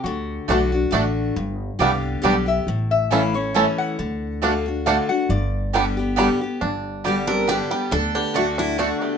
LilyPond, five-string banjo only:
\new Staff \with { instrumentName = "Five-string banjo" } { \time 3/4 \key g \major \tempo 4 = 137 r4 <a d'>8 r8 <a d'>8 r8 | r4 <g b d'>8 r8 <g b d'>8 r8 | r4 <a cis' e'>8 r8 <a cis' e'>8 r8 | r4 <a d'>8 r8 <a d'>8 r8 |
r4 <g b d'>8 r8 <g b d'>8 r8 | d'4 g8 d'8 g'8 g8 | d'8 d'8 a8 d'8 d'8 a8 | }